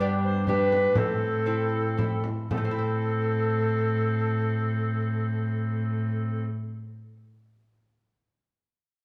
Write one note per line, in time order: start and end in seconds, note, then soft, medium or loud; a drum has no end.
0.00 0.92 G2 medium
0.00 0.96 G2 medium
0.00 0.44 B3 soft
0.00 0.46 D4 medium
0.00 0.44 D4 soft
0.00 0.44 G4 medium
0.24 0.50 C5 medium
0.47 0.93 B3 soft
0.47 0.99 D4 medium
0.47 0.93 D4 soft
0.47 0.93 G4 soft
0.47 0.99 B4 medium
0.47 frame drum soft
0.72 frame drum soft
0.95 2.25 A2 soft
0.95 2.25 C4 medium
0.95 2.25 A4 medium
0.95 frame drum medium
1.46 1.94 C4 soft
1.46 1.94 E4 soft
1.97 2.47 C4 soft
1.97 2.47 E4 soft
1.97 frame drum medium
2.24 frame drum soft
2.51 7.16 A2 soft
2.51 6.46 A2 medium
2.51 6.47 C4 medium
2.51 6.47 A4 medium
2.51 frame drum medium
2.57 7.20 A3 soft
2.65 7.23 C4 soft
2.71 7.27 E4 soft
2.78 7.30 C5 soft